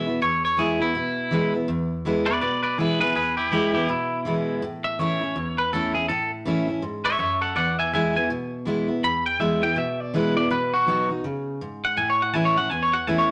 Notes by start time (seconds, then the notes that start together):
Already playing: B2 E5
0.07 B3 E4
0.22 E2 C#5
0.45 C#5
0.57 E3 G#3 B3 E4 G#4
0.80 B3 E4
0.95 B2
1.31 E3 G#3 B3 E4
1.54 B3 E4
1.68 E2
2.05 E3 G#3 B3 E4
2.26 B3 E4 B4 D5
2.41 B2 B4 D5
2.63 B4 D5
2.78 E3 G#3 B3 E4 G#4 B4
3.00 B3 E4 G#4 B4
3.15 E2 G#4 B4
3.37 E4 G4
3.51 E3 G#3 B3 E4 G4
3.74 B3 E4 G4
3.89 B2 E4
4.25 E3 G#3 B3 E4
4.62 A2
4.84 E5
4.99 E3 A3 C#4 E4 C#5
5.21 C#4 E4
5.36 E2
5.58 B4
5.73 E3 A3 C#4 E4 A4
5.95 C#4 E4 G#4
6.08 A2 A4
6.45 E3 A3 C#4 E4
6.67 C#4 E4
6.82 G#2
7.05 C#5 E5
7.19 F#2 C#5 E5
7.41 A4 F#5
7.56 E2 D5 F#5
7.79 E5 G#5
7.93 E3 G#3 B3 E4 E5 G#5
8.15 B3 E4 G#5
8.30 B2
8.65 E3 G#3 B3 E4
8.88 B3 E4
9.04 E2 B5
9.26 G5
9.40 E3 G#3 B3 E4 E5
9.62 B3 E4 G5
9.76 B2 E5
10.00 D5
10.14 E3 G#3 B3 E4 B4
10.36 B3 E4 D5
10.51 B2 B4
10.74 F#4
10.87 F#3 B3 D#4 F#4
11.09 D#4 F#4
11.24 C#3
11.61 G#2
11.85 F#5
11.97 A2 G#5
12.10 C#5
12.22 F#5
12.33 E3 A3 C#4 E4 G#5
12.45 C#5
12.56 C#4 E4 F#5
12.70 E2 G#5
12.83 C#5
12.93 F#5
13.07 E3 A3 C#4 E4 G#5
13.18 C#5